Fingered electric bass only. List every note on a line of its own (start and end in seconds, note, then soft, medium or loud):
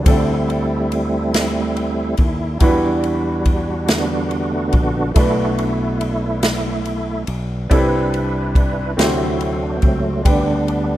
0.06 2.15 D2 medium
2.19 2.58 D#2 medium
2.61 4.70 E2 medium
4.74 5.13 A#1 medium
5.16 7.24 B1 loud
7.28 7.67 B1 medium
7.71 8.94 C2 medium
8.98 9.79 D2 medium
9.83 10.22 C#2 medium
10.26 10.97 D2 medium